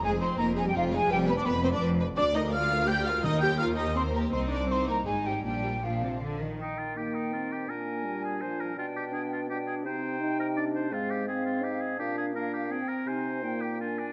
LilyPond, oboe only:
\new Staff \with { instrumentName = "Oboe" } { \time 3/4 \key g \phrygian \tempo 4 = 167 r2. | r2. | \key ees \major r2. | r2. |
r2. | r2. | ees'8 f'8 g'8 ees'8 f'8 g'8 | bes'4. aes'8 c''8 bes'8 |
f'8 g'8 aes'8 f'8 g'8 aes'8 | c''4. bes'8 d''8 c''8 | f'8 g'8 aes'8 f'8 g'8 aes'8 | g'8 aes'8 bes'8 g'8 aes'8 bes'8 |
c''4. g'8 f'8 d'8 | }